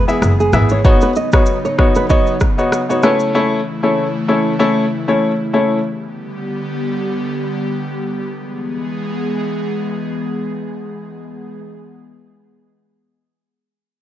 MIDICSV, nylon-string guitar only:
0, 0, Header, 1, 2, 480
1, 0, Start_track
1, 0, Key_signature, 4, "major"
1, 0, Tempo, 625000
1, 650, Time_signature, 4, 2, 24, 8
1, 10764, End_track
2, 0, Start_track
2, 0, Title_t, "Nylon-string guitar"
2, 0, Program_c, 0, 24
2, 309, Note_on_c, 0, 68, 75
2, 386, Note_off_c, 0, 68, 0
2, 549, Note_on_c, 0, 73, 72
2, 626, Note_off_c, 0, 73, 0
2, 789, Note_on_c, 0, 71, 71
2, 866, Note_off_c, 0, 71, 0
2, 895, Note_on_c, 0, 75, 71
2, 990, Note_off_c, 0, 75, 0
2, 1267, Note_on_c, 0, 73, 72
2, 1345, Note_off_c, 0, 73, 0
2, 1507, Note_on_c, 0, 71, 80
2, 1585, Note_off_c, 0, 71, 0
2, 1614, Note_on_c, 0, 75, 82
2, 1789, Note_off_c, 0, 75, 0
2, 2228, Note_on_c, 0, 73, 74
2, 2305, Note_off_c, 0, 73, 0
2, 2336, Note_on_c, 0, 71, 82
2, 2431, Note_off_c, 0, 71, 0
2, 10764, End_track
0, 0, End_of_file